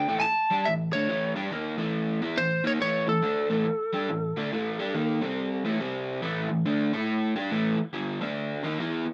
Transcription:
Already playing: G5
0.08 A2 E3 A3
0.20 G#5 A5
0.24 muted overdriven electric guitar stroke
0.51 G3 D4 G4
0.65 A2 E3 E5
0.93 D3 A3 D4 C#5
1.09 A2 E3 A3
1.36 G3 D4 G4
1.51 D#3 A#3 D#4
1.78 A2 E3 A3
2.22 E3 B3 E4
2.37 A2 E3 C5
2.64 D#3 A#3 D#4 C#5
2.80 A2 E3 A3 C#5
3.07 A2 E3 A4
3.23 D3 A3 D4
3.50 A2 E3 A3
3.66 muted overdriven electric guitar stroke
3.93 G3 D4 G4
4.09 A2 E3
4.37 D3 A3 D4
4.52 A2 E3 A3
4.79 G3 D4 G4
4.94 D#3 A#3 D#4
5.21 C3 G3 C4
5.65 A2 E3 A3
5.80 C3 G3 C4
6.22 A2 E3 A3
6.49 A2 E3
6.66 D3 A3 D4
6.93 A3 E4 A4
7.36 G3 D4 G4
7.51 A2 E3 A3
7.78 muted overdriven electric guitar stroke
7.93 G2 D3 G3
8.21 D3 A3 D4
8.64 D#3 A#3 D#4
8.80 E3 B3 E4
9.07 muted overdriven electric guitar stroke

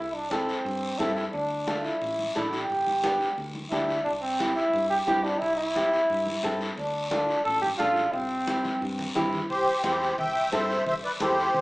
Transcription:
Already playing: C2
0.00 E4
0.15 D4
0.31 C4 E4 A4, high conga, short guiro
0.49 short guiro
0.65 G2, high conga, long guiro
0.98 G2 C4 E4 A4, high conga, short guiro
1.16 E4, short guiro
1.32 D2 D4, high conga, long guiro
1.67 A3 D4 F4, high conga, short guiro
1.77 F4
1.83 E4, short guiro
2.02 A1, high conga, long guiro
2.19 high conga
2.35 A1 A3 D4 E4, high conga, short guiro
2.51 G4, short guiro
2.70 G1, high conga, long guiro
2.87 high conga
3.03 B3 D4 G4, high conga, short guiro
3.21 short guiro
3.38 D2, high conga, long guiro
3.55 high conga
3.70 D2 B3 D4 E4 G4, high conga, short guiro
3.89 short guiro
4.04 C2 D4, high conga, long guiro
4.21 C4
4.40 C4 E4 G4, high conga, short guiro
4.55 E4, short guiro
4.74 G2, high conga, long guiro
4.90 G4
5.07 G2 C4 E4 G4, high conga, short guiro
5.24 D4, short guiro
5.40 C2 E4, high conga, long guiro
5.57 E4
5.75 C4 E4 G4, high conga, short guiro
5.93 short guiro
6.10 G2, high conga, long guiro
6.26 high conga
6.43 G2 C4 E4 A4, high conga, short guiro
6.61 short guiro
6.77 D2 D4, high conga, long guiro
7.11 D4 F4 A4, high conga, short guiro
7.29 short guiro
7.45 A1 A4, high conga, long guiro
7.62 G4, high conga
7.78 A1 D4 F4 A4, high conga, short guiro
7.96 short guiro
8.13 C2 C4, high conga, long guiro
8.47 C4 E4 G4, high conga, short guiro
8.64 high conga, short guiro
8.81 G2, long guiro
8.99 low conga
9.15 G2 C4 E4 G4, low conga, short guiro
9.33 low conga, short guiro
9.50 C2 G4 C5, high conga, long guiro
9.83 E2 C4 E4 G4 C5, high conga, short guiro
10.01 short guiro
10.18 C2 E5 G5, high conga, low conga, long guiro
10.52 G2 C4 E4 A4 C5 E5, high conga, short guiro
10.70 short guiro
10.86 C2 C5 E5, high conga, low conga, long guiro
11.04 B4 D5
11.20 E2 C4 E4 G4 A4 C5, high conga, short guiro
11.38 short guiro
11.54 C2, high conga, low conga, long guiro

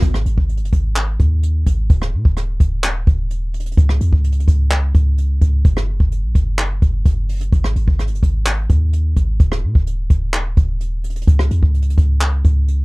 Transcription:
0.02 G#1, kick, closed hi-hat
0.14 cross-stick
0.26 G#1, closed hi-hat
0.38 G#1, kick
0.49 closed hi-hat
0.57 F#1, closed hi-hat
0.65 closed hi-hat
0.73 G#1, kick, closed hi-hat
0.96 clap, closed hi-hat
1.20 D#2, kick, closed hi-hat
1.43 closed hi-hat
1.67 G#1, kick, closed hi-hat
1.90 D#1, kick, closed hi-hat
2.02 cross-stick
2.13 A#2
2.25 D#1, kick
2.37 cross-stick, closed hi-hat
2.60 D#1, kick, closed hi-hat
2.84 clap, closed hi-hat
3.07 D#1, kick, closed hi-hat
3.31 closed hi-hat
3.54 closed hi-hat
3.60 closed hi-hat
3.66 closed hi-hat
3.72 closed hi-hat
3.77 C#2, kick, closed hi-hat
3.89 cross-stick
4.01 E2, closed hi-hat
4.13 C#2, kick
4.24 closed hi-hat
4.32 closed hi-hat
4.40 closed hi-hat
4.48 C#2, kick, closed hi-hat
4.71 clap, closed hi-hat
4.95 C#2, kick, closed hi-hat
5.18 closed hi-hat
5.42 C#2, kick, closed hi-hat
5.65 F#1, kick, closed hi-hat
5.77 cross-stick
6.00 F#1, kick
6.12 closed hi-hat
6.24 A#1
6.35 F#1, kick, closed hi-hat
6.59 clap, closed hi-hat
6.82 F#1, kick, closed hi-hat
7.06 F#1, kick, closed hi-hat
7.29 closed hi-hat, open hi-hat
7.41 closed hi-hat
7.52 G#1, kick, closed hi-hat
7.64 cross-stick
7.76 G#1, closed hi-hat
7.88 G#1, kick
7.99 cross-stick, closed hi-hat
8.07 F#1, closed hi-hat
8.15 closed hi-hat
8.23 G#1, kick, closed hi-hat
8.46 clap
8.70 D#2, kick, closed hi-hat
8.93 closed hi-hat
9.17 G#1, kick, closed hi-hat
9.40 D#1, kick, closed hi-hat
9.52 cross-stick
9.63 A#2
9.75 D#1, kick
9.87 closed hi-hat
10.10 D#1, kick, closed hi-hat
10.34 clap, closed hi-hat
10.57 D#1, kick, closed hi-hat
10.81 closed hi-hat
11.04 closed hi-hat
11.10 closed hi-hat
11.16 closed hi-hat
11.22 closed hi-hat
11.27 C#2, kick, closed hi-hat
11.39 cross-stick
11.51 E2, closed hi-hat
11.63 C#2, kick
11.74 closed hi-hat
11.82 closed hi-hat
11.90 closed hi-hat
11.98 C#2, kick, closed hi-hat
12.21 clap, closed hi-hat
12.45 C#2, kick, closed hi-hat
12.68 closed hi-hat

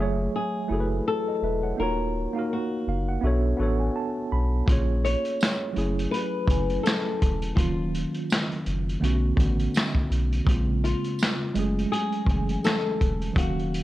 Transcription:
Already playing: F#1 A3 F4 E5
0.00 F#3 G#4 C#5
0.36 G#4
0.68 F#1 A3 E4 F#4
0.72 G#4 A4
0.80 B4
1.08 A4
1.28 A4 D#5
1.42 E1 B4 E5
1.63 C#5 F#5
1.77 D#1 A#3 D#4 F4 A#4
1.81 F#4 C#5
2.33 A#3 D#4 F5
2.37 F#4 A#4
2.53 F#4
2.87 F#1 F5
3.09 F#5
3.21 B1 B3 D4 F#4 E5
3.26 A4 C#5
3.57 A1 B3 D4 F#4 F#5
3.61 A4 C#5
3.80 G#5
3.96 A5
4.32 B1 B5
4.66 A#1 A#3 C#4 F4, kick, closed hi-hat
4.71 G#4 C#5
5.05 C#5, closed hi-hat
5.25 closed hi-hat
5.41 finger snap, snare, closed hi-hat, tambourine
5.73 F#1 F#3 A3 C#4 E4, closed hi-hat
5.78 G#4
5.99 closed hi-hat
6.11 B4, closed hi-hat
6.46 F#1 F#3 A3 C#4 E4, kick
6.50 G#5, closed hi-hat
6.70 closed hi-hat
6.83 A4, snare, closed hi-hat, tambourine
6.87 finger snap
7.22 E1, kick, closed hi-hat
7.42 closed hi-hat
7.55 D#1 D#3 F#3 A#3 F4, kick, closed hi-hat
7.60 C#4 F4
7.95 closed hi-hat
8.14 closed hi-hat
8.30 finger snap, snare, closed hi-hat, tambourine
8.52 closed hi-hat
8.66 F#1, closed hi-hat
8.89 closed hi-hat
9.00 B1 D3 A3 B3 C#4, closed hi-hat
9.05 F#4
9.36 A1 D3 A3 B3, kick, closed hi-hat
9.40 C#4 F#4
9.60 closed hi-hat
9.74 finger snap, snare, closed hi-hat, tambourine
9.95 kick
10.11 B1, closed hi-hat
10.33 closed hi-hat
10.45 A#1 C#3 G#3 A#3, kick
10.49 C4 F4, closed hi-hat
10.84 F4, closed hi-hat
11.04 closed hi-hat
11.19 finger snap, snare, tambourine
11.23 closed hi-hat
11.53 F#1 F#3 G#3 A3, closed hi-hat
11.57 C#4 G#4
11.79 closed hi-hat
11.92 G#4, closed hi-hat
12.12 closed hi-hat
12.25 F#1 E3 F#3 A3, kick
12.29 C#4 G#5, closed hi-hat
12.49 closed hi-hat
12.64 A4, finger snap, snare, closed hi-hat, tambourine
13.01 E1, kick, closed hi-hat
13.22 closed hi-hat
13.33 D#1 D#3 F#3 A#3, kick
13.37 C#4 F#4 F5, closed hi-hat
13.59 closed hi-hat
13.74 closed hi-hat

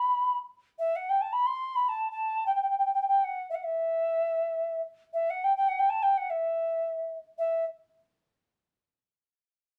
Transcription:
Already playing: B5
0.78 E5
0.95 F#5
1.09 G5
1.21 A5
1.32 B5
1.46 C6
1.75 B5
1.88 A5
2.11 A5
2.46 G5
2.54 G5
2.61 G5
2.69 G5
2.78 G5
2.85 G5
2.93 G5
3.01 G5
3.07 G5
3.24 F#5
3.49 E5
3.54 F#5
3.63 E5
5.13 E5
5.29 F#5
5.43 G5
5.56 G5
5.68 F#5
5.78 G5
5.89 A5
6.02 G5
6.17 F#5
6.29 E5
7.38 E5

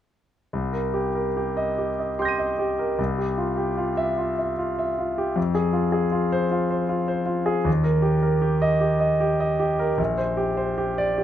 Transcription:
0.53 C2
0.73 A#4
0.94 G4
1.15 A#4
1.37 G4
1.57 D#5
1.78 G4
1.99 D#5
2.19 G4 C6 G6
2.25 A#6 D#7
2.39 D#5
2.59 G4
2.79 A#4
2.99 C2
3.18 G4
3.38 F4
3.57 G4
3.77 F4
3.97 E5
4.18 F4
4.39 E5
4.59 F4
4.79 E5
4.99 F4
5.18 G4
5.36 F2
5.55 G#4
5.73 F4
5.92 G#4
6.12 F4
6.32 C5
6.51 F4
6.71 C5
6.89 F4
7.08 C5
7.26 F4
7.46 G#4
7.65 D#2
7.84 A#4
8.02 G4
8.22 A#4
8.42 G4
8.62 D#5
8.81 G4
9.00 D#5
9.20 G4
9.40 D#5
9.60 G4
9.79 A#4
9.98 A#1
10.18 C5
10.37 G4
10.57 C5
10.78 G4
10.98 D5
11.18 G4

